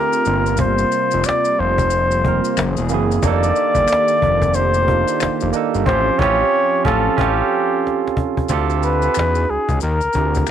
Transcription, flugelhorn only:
0, 0, Header, 1, 2, 480
1, 0, Start_track
1, 0, Key_signature, -2, "minor"
1, 0, Tempo, 659341
1, 425, Time_signature, 4, 2, 24, 8
1, 7648, End_track
2, 0, Start_track
2, 0, Title_t, "Flugelhorn"
2, 0, Program_c, 0, 56
2, 0, Note_on_c, 0, 70, 95
2, 404, Note_off_c, 0, 70, 0
2, 438, Note_on_c, 0, 72, 90
2, 920, Note_on_c, 0, 74, 97
2, 931, Note_off_c, 0, 72, 0
2, 1162, Note_on_c, 0, 72, 92
2, 1173, Note_off_c, 0, 74, 0
2, 2113, Note_off_c, 0, 72, 0
2, 2355, Note_on_c, 0, 74, 111
2, 3312, Note_on_c, 0, 72, 103
2, 3323, Note_off_c, 0, 74, 0
2, 4029, Note_off_c, 0, 72, 0
2, 4271, Note_on_c, 0, 72, 103
2, 4502, Note_on_c, 0, 73, 115
2, 4513, Note_off_c, 0, 72, 0
2, 4983, Note_off_c, 0, 73, 0
2, 4987, Note_on_c, 0, 69, 97
2, 5232, Note_on_c, 0, 67, 85
2, 5243, Note_off_c, 0, 69, 0
2, 5948, Note_off_c, 0, 67, 0
2, 6437, Note_on_c, 0, 71, 93
2, 6918, Note_on_c, 0, 68, 80
2, 6929, Note_off_c, 0, 71, 0
2, 7149, Note_off_c, 0, 68, 0
2, 7153, Note_on_c, 0, 70, 89
2, 7648, Note_off_c, 0, 70, 0
2, 7648, End_track
0, 0, End_of_file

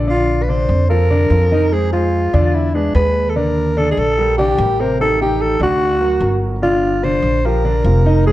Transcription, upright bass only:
0, 0, Header, 1, 2, 480
1, 0, Start_track
1, 0, Key_signature, -2, "major"
1, 0, Tempo, 408719
1, 93, Time_signature, 4, 2, 24, 8
1, 9775, End_track
2, 0, Start_track
2, 0, Title_t, "Upright bass"
2, 0, Program_c, 0, 32
2, 0, Note_on_c, 0, 34, 91
2, 740, Note_off_c, 0, 34, 0
2, 807, Note_on_c, 0, 41, 91
2, 1485, Note_off_c, 0, 41, 0
2, 1527, Note_on_c, 0, 41, 89
2, 2662, Note_off_c, 0, 41, 0
2, 2743, Note_on_c, 0, 40, 96
2, 3414, Note_off_c, 0, 40, 0
2, 3459, Note_on_c, 0, 39, 98
2, 4589, Note_off_c, 0, 39, 0
2, 4666, Note_on_c, 0, 34, 83
2, 5335, Note_off_c, 0, 34, 0
2, 5381, Note_on_c, 0, 33, 98
2, 6509, Note_off_c, 0, 33, 0
2, 6571, Note_on_c, 0, 38, 91
2, 7248, Note_off_c, 0, 38, 0
2, 7286, Note_on_c, 0, 31, 91
2, 8420, Note_off_c, 0, 31, 0
2, 8485, Note_on_c, 0, 34, 87
2, 9163, Note_off_c, 0, 34, 0
2, 9213, Note_on_c, 0, 29, 97
2, 9775, Note_off_c, 0, 29, 0
2, 9775, End_track
0, 0, End_of_file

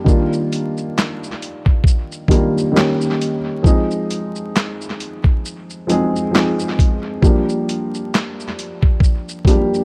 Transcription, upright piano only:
0, 0, Header, 1, 2, 480
1, 0, Start_track
1, 0, Key_signature, -3, "major"
1, 0, Tempo, 895522
1, 34, Time_signature, 4, 2, 24, 8
1, 5274, End_track
2, 0, Start_track
2, 0, Title_t, "Upright piano"
2, 0, Program_c, 0, 0
2, 0, Control_c, 0, 64, 127
2, 23, Note_on_c, 0, 51, 70
2, 30, Note_on_c, 0, 55, 70
2, 35, Note_on_c, 0, 58, 74
2, 40, Control_c, 0, 64, 0
2, 41, Note_on_c, 0, 62, 68
2, 49, Note_on_c, 0, 65, 83
2, 130, Control_c, 0, 64, 127
2, 673, Note_off_c, 0, 51, 0
2, 676, Note_off_c, 0, 55, 0
2, 679, Note_off_c, 0, 58, 0
2, 682, Note_off_c, 0, 62, 0
2, 686, Note_off_c, 0, 65, 0
2, 1227, Note_on_c, 0, 51, 70
2, 1234, Note_on_c, 0, 55, 79
2, 1240, Note_on_c, 0, 58, 82
2, 1247, Note_on_c, 0, 62, 68
2, 1253, Note_on_c, 0, 65, 81
2, 1401, Note_off_c, 0, 51, 0
2, 1404, Note_off_c, 0, 55, 0
2, 1407, Note_off_c, 0, 58, 0
2, 1410, Note_off_c, 0, 62, 0
2, 1413, Note_off_c, 0, 65, 0
2, 1457, Note_on_c, 0, 51, 77
2, 1464, Note_on_c, 0, 55, 71
2, 1469, Note_on_c, 0, 58, 71
2, 1477, Note_on_c, 0, 61, 74
2, 1481, Control_c, 0, 64, 0
2, 1483, Note_on_c, 0, 67, 78
2, 1578, Control_c, 0, 64, 127
2, 1792, Note_off_c, 0, 51, 0
2, 1796, Note_off_c, 0, 55, 0
2, 1798, Note_off_c, 0, 58, 0
2, 1802, Note_off_c, 0, 61, 0
2, 1805, Note_off_c, 0, 67, 0
2, 1944, Note_on_c, 0, 53, 78
2, 1950, Note_on_c, 0, 56, 68
2, 1957, Note_on_c, 0, 60, 62
2, 1961, Control_c, 0, 64, 0
2, 1963, Note_on_c, 0, 63, 79
2, 1969, Note_on_c, 0, 68, 79
2, 2039, Control_c, 0, 64, 127
2, 2593, Note_off_c, 0, 53, 0
2, 2596, Note_off_c, 0, 56, 0
2, 2600, Note_off_c, 0, 60, 0
2, 2603, Note_off_c, 0, 63, 0
2, 2606, Note_off_c, 0, 68, 0
2, 3146, Note_on_c, 0, 53, 79
2, 3152, Note_on_c, 0, 56, 69
2, 3158, Note_on_c, 0, 60, 76
2, 3164, Note_on_c, 0, 63, 65
2, 3171, Note_on_c, 0, 68, 93
2, 3320, Note_off_c, 0, 53, 0
2, 3323, Note_off_c, 0, 56, 0
2, 3326, Note_off_c, 0, 60, 0
2, 3329, Note_off_c, 0, 63, 0
2, 3333, Note_off_c, 0, 68, 0
2, 3382, Note_on_c, 0, 53, 75
2, 3389, Note_on_c, 0, 56, 65
2, 3395, Note_on_c, 0, 60, 61
2, 3401, Note_on_c, 0, 63, 68
2, 3408, Note_on_c, 0, 68, 84
2, 3715, Note_off_c, 0, 53, 0
2, 3718, Note_off_c, 0, 56, 0
2, 3721, Note_off_c, 0, 60, 0
2, 3724, Note_off_c, 0, 63, 0
2, 3728, Note_off_c, 0, 68, 0
2, 3869, Note_on_c, 0, 53, 88
2, 3874, Note_on_c, 0, 55, 73
2, 3880, Control_c, 0, 64, 0
2, 3881, Note_on_c, 0, 58, 75
2, 3887, Note_on_c, 0, 62, 71
2, 3894, Note_on_c, 0, 67, 77
2, 3966, Control_c, 0, 64, 127
2, 4516, Note_off_c, 0, 53, 0
2, 4518, Note_off_c, 0, 55, 0
2, 4522, Note_off_c, 0, 58, 0
2, 4525, Note_off_c, 0, 62, 0
2, 4528, Note_off_c, 0, 67, 0
2, 5066, Note_on_c, 0, 53, 73
2, 5073, Note_on_c, 0, 55, 79
2, 5079, Note_on_c, 0, 58, 67
2, 5085, Note_on_c, 0, 62, 67
2, 5091, Note_on_c, 0, 67, 85
2, 5240, Note_off_c, 0, 53, 0
2, 5244, Note_off_c, 0, 55, 0
2, 5247, Note_off_c, 0, 58, 0
2, 5249, Note_off_c, 0, 62, 0
2, 5253, Note_off_c, 0, 67, 0
2, 5274, End_track
0, 0, End_of_file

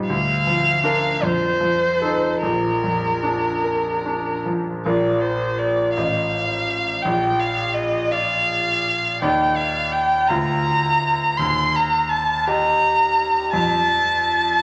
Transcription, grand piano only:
0, 0, Header, 1, 2, 480
1, 0, Start_track
1, 0, Key_signature, -2, "major"
1, 0, Tempo, 761421
1, 59, Time_signature, 6, 3, 24, 8
1, 1020, Tempo, 806452
1, 2940, Tempo, 729927
1, 5820, Tempo, 719424
1, 9421, End_track
2, 0, Start_track
2, 0, Title_t, "Grand piano"
2, 0, Program_c, 0, 0
2, 0, Control_c, 0, 64, 127
2, 0, Note_on_c, 0, 43, 27
2, 0, Note_on_c, 0, 55, 33
2, 0, Note_on_c, 0, 63, 34
2, 0, Note_on_c, 0, 72, 33
2, 61, Note_on_c, 0, 38, 43
2, 65, Note_off_c, 0, 55, 0
2, 67, Control_c, 0, 64, 0
2, 71, Note_off_c, 0, 63, 0
2, 71, Note_off_c, 0, 72, 0
2, 74, Note_off_c, 0, 43, 0
2, 184, Control_c, 0, 64, 127
2, 296, Note_on_c, 0, 53, 35
2, 527, Note_on_c, 0, 62, 29
2, 534, Note_on_c, 0, 70, 34
2, 678, Note_off_c, 0, 53, 0
2, 747, Note_off_c, 0, 62, 0
2, 751, Note_off_c, 0, 70, 0
2, 753, Note_off_c, 0, 38, 0
2, 775, Note_on_c, 0, 41, 39
2, 785, Control_c, 0, 64, 0
2, 875, Control_c, 0, 64, 127
2, 1013, Note_on_c, 0, 53, 37
2, 1257, Note_on_c, 0, 69, 32
2, 1258, Note_on_c, 0, 63, 29
2, 1398, Note_off_c, 0, 53, 0
2, 1474, Note_off_c, 0, 63, 0
2, 1474, Note_off_c, 0, 69, 0
2, 1477, Note_off_c, 0, 41, 0
2, 1500, Note_on_c, 0, 34, 40
2, 1510, Control_c, 0, 64, 0
2, 1633, Control_c, 0, 64, 127
2, 1745, Note_on_c, 0, 41, 25
2, 1981, Note_on_c, 0, 62, 28
2, 2127, Note_off_c, 0, 41, 0
2, 2222, Note_on_c, 0, 70, 24
2, 2367, Note_off_c, 0, 62, 0
2, 2472, Note_on_c, 0, 62, 24
2, 2613, Note_off_c, 0, 70, 0
2, 2712, Note_on_c, 0, 53, 26
2, 2855, Note_off_c, 0, 62, 0
2, 2918, Note_off_c, 0, 34, 0
2, 2941, Note_off_c, 0, 53, 0
2, 2947, Note_on_c, 0, 65, 30
2, 2948, Note_on_c, 0, 34, 44
2, 2951, Control_c, 0, 64, 0
2, 2951, Note_on_c, 0, 70, 31
2, 3073, Control_c, 0, 64, 127
2, 3650, Note_off_c, 0, 65, 0
2, 3652, Note_off_c, 0, 70, 0
2, 3656, Note_off_c, 0, 34, 0
2, 3681, Note_on_c, 0, 33, 36
2, 3681, Note_on_c, 0, 65, 26
2, 3683, Control_c, 0, 64, 0
2, 3683, Note_on_c, 0, 75, 25
2, 3772, Control_c, 0, 64, 127
2, 4367, Note_off_c, 0, 65, 0
2, 4368, Note_off_c, 0, 75, 0
2, 4372, Note_off_c, 0, 33, 0
2, 4391, Note_on_c, 0, 34, 44
2, 4401, Control_c, 0, 64, 0
2, 4484, Control_c, 0, 64, 127
2, 5090, Note_on_c, 0, 65, 28
2, 5095, Note_on_c, 0, 74, 32
2, 5791, Note_off_c, 0, 65, 0
2, 5793, Note_off_c, 0, 74, 0
2, 5796, Note_off_c, 0, 34, 0
2, 5817, Note_on_c, 0, 74, 35
2, 5818, Note_on_c, 0, 39, 47
2, 5819, Note_on_c, 0, 63, 31
2, 5833, Control_c, 0, 64, 0
2, 5949, Control_c, 0, 64, 127
2, 6516, Note_off_c, 0, 74, 0
2, 6517, Note_off_c, 0, 63, 0
2, 6521, Note_off_c, 0, 39, 0
2, 6536, Note_on_c, 0, 65, 32
2, 6536, Note_on_c, 0, 77, 30
2, 6537, Note_on_c, 0, 38, 42
2, 6558, Control_c, 0, 64, 0
2, 6646, Control_c, 0, 64, 127
2, 7239, Note_off_c, 0, 65, 0
2, 7239, Note_off_c, 0, 77, 0
2, 7244, Note_off_c, 0, 38, 0
2, 7265, Note_on_c, 0, 39, 53
2, 7283, Control_c, 0, 64, 0
2, 7401, Control_c, 0, 64, 127
2, 7988, Note_on_c, 0, 67, 37
2, 7992, Note_on_c, 0, 75, 36
2, 8677, Note_off_c, 0, 39, 0
2, 8679, Note_off_c, 0, 67, 0
2, 8681, Note_off_c, 0, 75, 0
2, 8695, Note_on_c, 0, 41, 50
2, 8717, Control_c, 0, 64, 0
2, 8835, Control_c, 0, 64, 127
2, 9421, Note_off_c, 0, 41, 0
2, 9421, End_track
0, 0, End_of_file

